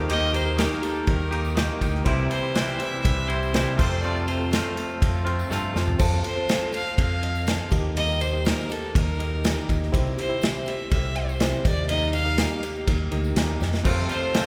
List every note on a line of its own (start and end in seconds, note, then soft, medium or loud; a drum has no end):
0.00 0.65 D#2 loud
0.00 0.40 A#3 medium
0.00 0.40 D#4 medium
0.00 0.11 G4 loud
0.00 0.40 G4 medium
0.00 0.40 A#4 loud
0.09 0.34 D#3 medium
0.09 0.34 G3 medium
0.09 0.34 A#3 medium
0.09 0.33 D#4 medium
0.09 0.32 G4 loud
0.09 0.37 D#5 loud
0.09 ride loud
0.22 tambourine soft
0.33 0.58 A#3 soft
0.33 0.59 D#4 medium
0.33 0.58 G4 medium
0.33 0.61 C5 loud
0.33 ride medium
0.33 tambourine medium
0.45 1.24 A#3 medium
0.45 1.24 D#4 medium
0.45 1.24 G4 medium
0.45 1.24 A#4 medium
0.58 0.83 D#3 medium
0.58 0.83 G3 medium
0.58 0.83 A#3 medium
0.58 0.83 D#4 medium
0.58 0.81 G4 medium
0.58 0.85 A#4 medium
0.58 snare loud
0.58 ride loud
0.58 tambourine loud
0.71 snare soft
0.71 tambourine soft
0.82 1.07 A#3 soft
0.82 1.07 D#4 medium
0.82 1.07 G4 medium
0.82 1.07 A4 medium
0.82 ride medium
0.82 tambourine medium
0.96 tambourine soft
1.06 1.68 D#2 loud
1.06 1.56 G3 medium
1.06 1.57 A#3 medium
1.06 1.57 D#4 medium
1.06 1.58 G4 medium
1.06 1.77 A#4 medium
1.06 kick loud
1.06 ride loud
1.20 tambourine soft
1.30 1.98 A#3 medium
1.30 1.55 A#3 medium
1.30 1.98 D#4 medium
1.30 1.56 D#4 medium
1.30 1.98 G4 medium
1.30 1.57 G4 medium
1.30 1.99 A#4 medium
1.30 ride medium
1.45 tambourine medium
1.57 1.81 D#3 medium
1.57 1.82 G3 medium
1.57 1.82 A#3 medium
1.57 1.82 D#4 medium
1.57 1.80 G4 loud
1.57 snare loud
1.57 ride loud
1.57 tambourine medium
1.81 2.01 D2 medium
1.81 2.06 A#3 medium
1.81 2.06 D#4 medium
1.81 2.06 G4 medium
1.81 kick medium
1.81 ride medium
1.81 tambourine medium
1.95 snare soft
2.05 2.26 C2 loud
2.05 2.30 C3 loud
2.05 2.53 E3 loud
2.05 2.30 G3 medium
2.05 2.39 C4 medium
2.05 2.31 C4 medium
2.05 2.39 E4 medium
2.05 2.30 E4 loud
2.05 2.39 G4 medium
2.05 2.28 G4 medium
2.05 2.39 C5 loud
2.05 kick loud
2.05 ride loud
2.18 tambourine soft
2.29 2.54 G3 medium
2.29 2.55 C4 soft
2.29 2.55 E4 medium
2.29 2.55 G4 medium
2.29 2.80 C5 loud
2.29 ride medium
2.29 tambourine medium
2.42 3.21 C4 medium
2.42 3.21 E4 medium
2.42 3.21 G4 medium
2.42 3.21 C5 medium
2.54 2.80 C3 medium
2.54 3.53 E3 medium
2.54 2.80 G3 medium
2.54 2.80 C4 medium
2.54 2.80 E4 medium
2.54 2.78 G4 medium
2.54 snare loud
2.54 ride loud
2.54 tambourine medium
2.68 snare soft
2.68 tambourine soft
2.79 3.04 C4 soft
2.79 3.05 E4 medium
2.79 3.04 G4 medium
2.79 3.01 E5 loud
2.79 ride medium
2.79 tambourine medium
2.93 tambourine soft
3.02 3.65 C2 medium
3.02 3.53 G3 medium
3.02 3.54 C4 medium
3.02 3.29 E5 loud
3.02 kick loud
3.02 ride loud
3.06 3.54 E4 medium
3.06 3.55 G4 medium
3.18 tambourine soft
3.27 3.76 C4 medium
3.27 3.55 C4 medium
3.27 3.55 E4 medium
3.27 3.78 E4 medium
3.27 3.78 G4 medium
3.27 3.76 C5 loud
3.27 3.77 C5 medium
3.27 ride medium
3.32 3.54 G3 medium
3.43 tambourine medium
3.54 3.78 C3 medium
3.54 3.77 E3 medium
3.54 3.79 G3 medium
3.54 3.79 C4 medium
3.54 3.79 E4 medium
3.54 3.77 G4 medium
3.54 snare loud
3.54 ride loud
3.54 tambourine medium
3.76 4.59 F2 loud
3.76 4.02 C3 medium
3.76 4.03 F3 medium
3.76 4.03 A3 medium
3.76 4.34 C4 medium
3.76 4.02 C4 soft
3.76 4.34 F4 medium
3.76 4.03 F4 medium
3.76 4.34 A4 medium
3.76 4.03 A4 medium
3.76 4.03 C5 medium
3.76 4.34 C5 medium
3.76 kick loud
3.76 tambourine medium
3.76 crash loud
3.81 4.01 F2 medium
4.01 4.52 F2 loud
4.01 4.52 C3 medium
4.01 4.27 F3 medium
4.01 4.28 A3 loud
4.01 4.28 C4 medium
4.01 4.27 F4 medium
4.01 4.26 A4 medium
4.01 4.26 D5 loud
4.01 tambourine soft
4.16 tambourine soft
4.27 4.50 F3 medium
4.27 4.51 A3 medium
4.27 4.50 C4 soft
4.27 4.51 F4 soft
4.27 4.51 A4 medium
4.27 4.73 C5 medium
4.27 ride medium
4.27 tambourine medium
4.39 5.18 C4 medium
4.39 5.18 F4 medium
4.39 5.18 A4 medium
4.39 5.18 C5 medium
4.39 tambourine soft
4.50 4.76 F3 medium
4.50 5.26 A3 medium
4.50 4.76 C4 medium
4.50 4.76 F4 medium
4.50 4.75 A4 medium
4.50 snare loud
4.50 ride loud
4.50 tambourine loud
4.65 tambourine soft
4.76 5.00 C4 medium
4.76 5.01 F4 medium
4.76 5.01 A4 medium
4.76 ride medium
4.76 tambourine medium
4.90 tambourine soft
5.00 5.42 F2 medium
5.00 5.48 F3 medium
5.00 5.49 C4 medium
5.00 5.49 F4 medium
5.00 5.50 A4 medium
5.00 kick loud
5.00 ride loud
5.14 tambourine soft
5.25 5.49 F3 medium
5.25 5.50 A3 medium
5.25 5.93 C4 medium
5.25 5.50 C4 medium
5.25 5.51 F4 medium
5.25 5.93 F4 medium
5.25 5.92 A4 medium
5.25 5.93 C5 loud
5.25 ride medium
5.25 tambourine soft
5.39 tambourine medium
5.49 5.98 F2 loud
5.49 5.73 G2 medium
5.49 5.98 C3 medium
5.49 5.75 F3 medium
5.49 5.75 A3 loud
5.49 5.75 C4 medium
5.49 5.75 F4 medium
5.49 5.73 A4 loud
5.49 snare medium
5.49 tambourine loud
5.74 5.97 F2 medium
5.74 5.99 F3 medium
5.74 5.99 A3 medium
5.74 5.99 C4 medium
5.74 5.99 F4 medium
5.74 5.99 A4 medium
5.74 snare medium
5.74 tambourine medium
5.88 floor tom medium
5.88 tambourine soft
5.98 6.20 F2 loud
5.98 6.24 F3 medium
5.98 6.33 C4 loud
5.98 6.24 C4 loud
5.98 6.33 F4 medium
5.98 6.23 F4 medium
5.98 6.33 A4 medium
5.98 6.22 A4 loud
5.98 6.33 C5 loud
5.98 kick loud
5.98 crash loud
6.12 tambourine soft
6.23 6.47 C4 soft
6.23 6.48 F4 soft
6.23 6.48 A4 medium
6.23 6.71 C5 loud
6.23 ride medium
6.23 tambourine medium
6.36 7.14 C4 medium
6.36 7.15 F4 medium
6.36 7.14 A4 medium
6.36 7.14 C5 medium
6.48 6.73 F3 medium
6.48 6.73 C4 medium
6.48 6.71 F4 medium
6.48 6.71 A4 medium
6.48 snare loud
6.48 ride loud
6.48 tambourine loud
6.61 tambourine soft
6.72 6.97 C4 soft
6.72 6.97 F4 medium
6.72 6.97 A4 medium
6.72 6.97 F5 loud
6.72 ride medium
6.72 tambourine medium
6.96 7.59 F2 medium
6.96 7.45 F3 medium
6.96 7.45 C4 medium
6.96 7.46 F4 medium
6.96 7.46 A4 medium
6.96 7.68 F5 loud
6.96 kick loud
6.96 ride loud
7.10 tambourine soft
7.23 7.72 C4 medium
7.23 7.72 F4 medium
7.23 7.72 A4 medium
7.23 7.71 D#5 medium
7.23 ride medium
7.35 tambourine medium
7.46 7.71 F3 medium
7.46 7.72 C4 medium
7.46 7.71 F4 medium
7.46 7.70 A4 medium
7.46 snare loud
7.46 ride loud
7.46 tambourine loud
7.70 8.52 D#2 loud
7.70 7.95 A#3 medium
7.70 8.27 D#4 medium
7.70 7.96 D#4 medium
7.70 7.96 G4 medium
7.70 8.27 G4 medium
7.70 8.28 A#4 medium
7.70 8.28 D#5 loud
7.70 kick loud
7.70 ride medium
7.70 tambourine medium
7.96 8.21 D#3 medium
7.96 8.21 G3 medium
7.96 8.21 A#3 medium
7.96 8.21 D#4 medium
7.96 8.20 G4 medium
7.96 8.23 D#5 loud
7.96 ride loud
8.08 tambourine soft
8.20 8.45 A#3 medium
8.20 8.46 D#4 medium
8.20 8.46 G4 medium
8.20 8.48 C5 loud
8.20 ride medium
8.20 tambourine medium
8.33 9.11 D#4 medium
8.33 9.11 G4 medium
8.33 9.11 A#4 medium
8.33 9.11 D#5 medium
8.45 8.70 D#3 medium
8.45 8.70 G3 medium
8.45 8.70 A#3 medium
8.45 8.70 D#4 medium
8.45 8.69 G4 medium
8.45 8.73 A#4 loud
8.45 snare loud
8.45 ride loud
8.45 tambourine loud
8.57 snare soft
8.57 tambourine soft
8.69 8.95 A#3 soft
8.69 8.95 D#4 medium
8.69 8.95 G4 medium
8.69 8.95 A4 medium
8.69 ride medium
8.69 tambourine medium
8.82 tambourine soft
8.95 9.55 D#2 loud
8.95 9.44 G3 medium
8.95 9.43 A#3 medium
8.95 9.44 D#4 medium
8.95 9.45 G4 medium
8.95 9.65 A#4 loud
8.95 kick loud
8.95 ride loud
9.08 tambourine soft
9.19 9.86 D#4 medium
9.19 9.86 G4 medium
9.19 9.86 A#4 medium
9.19 9.86 D#5 medium
9.19 ride medium
9.43 9.68 D#3 medium
9.43 9.69 G3 medium
9.43 9.69 A#3 medium
9.43 9.68 D#4 medium
9.43 9.67 G4 medium
9.43 snare loud
9.43 ride loud
9.43 tambourine medium
9.68 9.89 D#2 medium
9.68 9.93 A#3 medium
9.68 9.94 D#4 medium
9.68 9.93 G4 medium
9.68 kick loud
9.68 ride medium
9.68 tambourine medium
9.82 snare soft
9.92 10.13 C2 loud
9.92 10.17 C3 medium
9.92 10.18 G3 medium
9.92 10.18 C4 loud
9.92 10.26 E4 loud
9.92 10.18 E4 loud
9.92 10.26 G4 medium
9.92 10.16 G4 loud
9.92 10.26 C5 medium
9.92 10.26 E5 loud
9.92 kick loud
9.92 ride loud
10.06 tambourine soft
10.17 10.41 C4 medium
10.17 10.42 E4 medium
10.17 10.42 G4 medium
10.17 10.70 C5 loud
10.17 ride medium
10.17 tambourine medium
10.29 11.07 E4 medium
10.29 11.07 G4 medium
10.29 11.07 C5 medium
10.29 11.07 E5 medium
10.41 10.66 C3 medium
10.41 10.67 G3 medium
10.41 10.67 C4 medium
10.41 10.67 E4 medium
10.41 10.66 G4 medium
10.41 snare loud
10.41 ride loud
10.41 tambourine loud
10.55 tambourine soft
10.66 10.91 C4 medium
10.66 10.92 E4 medium
10.66 10.91 G4 medium
10.66 10.91 E5 medium
10.66 ride medium
10.66 tambourine medium
10.79 tambourine soft
10.91 11.52 C2 loud
10.91 11.40 G3 medium
10.91 11.40 C4 medium
10.91 11.41 E4 medium
10.91 11.42 G4 medium
10.91 11.17 E5 loud
10.91 kick loud
10.91 ride loud
11.04 tambourine soft
11.15 11.64 E4 medium
11.15 11.63 G4 medium
11.15 11.65 C5 medium
11.15 11.64 C5 medium
11.15 11.65 E5 medium
11.15 ride medium
11.29 tambourine medium
11.40 11.65 C3 medium
11.40 11.65 G3 medium
11.40 11.65 C4 medium
11.40 11.66 E4 loud
11.40 11.64 G4 medium
11.40 snare loud
11.40 ride loud
11.40 tambourine loud
11.64 12.45 D#2 loud
11.64 11.89 A#3 medium
11.64 12.20 D#4 medium
11.64 11.90 D#4 medium
11.64 12.20 G4 medium
11.64 11.89 G4 medium
11.64 12.20 A#4 medium
11.64 11.88 D5 loud
11.64 12.20 D#5 medium
11.64 kick loud
11.64 ride medium
11.64 tambourine medium
11.89 12.14 D#3 medium
11.89 12.14 G3 medium
11.89 12.14 A#3 medium
11.89 12.14 D#4 medium
11.89 12.12 G4 medium
11.89 12.12 D#5 loud
11.89 ride loud
12.02 tambourine soft
12.13 12.38 A#3 soft
12.13 12.39 D#4 medium
12.13 12.38 G4 medium
12.13 12.59 F5 loud
12.13 ride medium
12.13 tambourine medium
12.25 13.03 D#4 medium
12.25 13.03 G4 medium
12.25 13.03 A#4 medium
12.25 13.03 D#5 medium
12.38 12.63 D#3 medium
12.38 12.63 G3 medium
12.38 12.63 A#3 medium
12.38 12.63 D#4 medium
12.38 12.62 G4 loud
12.38 snare loud
12.38 ride loud
12.38 tambourine loud
12.52 tambourine soft
12.63 12.86 A#3 soft
12.63 12.87 D#4 medium
12.63 12.87 G4 medium
12.63 ride medium
12.63 tambourine medium
12.75 tambourine soft
12.87 13.07 D#2 loud
12.87 13.36 G3 medium
12.87 13.36 A#3 medium
12.87 13.36 D#4 medium
12.87 13.37 G4 medium
12.87 kick loud
12.87 ride loud
12.87 tambourine soft
13.11 13.34 D2 medium
13.11 13.78 D#4 medium
13.11 13.78 G4 medium
13.11 13.78 A#4 medium
13.11 13.78 D#5 loud
13.11 ride medium
13.11 tambourine soft
13.24 tambourine medium
13.36 13.58 D#2 medium
13.36 13.60 D#3 medium
13.36 13.61 G3 loud
13.36 13.61 A#3 loud
13.36 13.60 D#4 loud
13.36 13.59 G4 medium
13.36 snare loud
13.36 ride loud
13.36 tambourine medium
13.60 13.83 F2 medium
13.60 13.85 A#3 medium
13.60 13.85 D#4 medium
13.60 13.85 G4 medium
13.60 snare medium
13.60 tambourine medium
13.74 snare medium
13.84 14.33 F2 medium
13.84 14.05 F2 loud
13.84 14.34 C3 medium
13.84 14.09 F3 medium
13.84 14.09 A3 medium
13.84 14.18 C4 medium
13.84 14.10 C4 medium
13.84 14.18 F4 medium
13.84 14.09 F4 medium
13.84 14.18 A4 medium
13.84 14.07 A4 loud
13.84 14.18 C5 loud
13.84 kick loud
13.84 crash loud
13.97 tambourine soft
14.09 14.32 F3 medium
14.09 14.33 A3 medium
14.09 14.33 C4 soft
14.09 14.34 F4 medium
14.09 14.33 A4 medium
14.09 14.46 C5 loud
14.09 ride medium
14.09 tambourine medium
14.21 14.46 C4 medium
14.21 14.46 F4 medium
14.21 14.46 A4 medium
14.21 14.46 C5 medium
14.34 14.46 F3 medium
14.34 14.46 A3 medium
14.34 14.46 C4 medium
14.34 14.46 F4 medium
14.34 14.46 A4 medium
14.34 snare loud
14.34 ride loud
14.34 tambourine loud